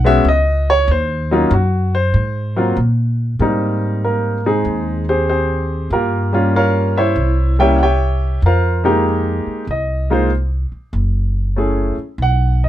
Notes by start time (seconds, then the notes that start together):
Already playing: B1
0.04 G#3 B3 C#4 F#4 E5
0.25 C#2 D#5
0.70 C#5
0.88 D#2 C5
1.31 F#3 A#3 C#4 D#4 F4
1.51 F#2 F#4
1.95 C5
2.14 G#2
2.56 F#3 A#3 C4 F4
2.77 A#2
3.39 G#2 G3 A#3 C4 D#4
4.04 A#3 A#4
4.46 G#3 C4 D#4 G#4
4.65 D#2
5.09 C4 G4 G#4 C5
5.29 C4 G4 G#4 C5
5.90 G2 A#3 F4 G4 A#4
6.33 G3 A#3 C#4 F4
6.56 F4 A#4 C#5 F5
6.97 E4 C5 C#5 E5
7.16 C2
7.59 G3 A#3 C#4 E4 G4 C#5 E5 G5
7.78 F#5
7.83 G4 C#5 E5 G5
8.42 F2 A#4 F5
8.46 F4 C5
8.84 G#3 A#3 D#4 G4
9.46 muted upright bass stroke
9.67 C2 D#5
10.10 G#3 A#3 D#4 F4 C5
10.72 muted upright bass stroke
10.93 F#1
11.56 A3 C#4 E4 G#4
11.97 muted upright bass stroke
12.18 B1
12.22 F#5
12.64 D#5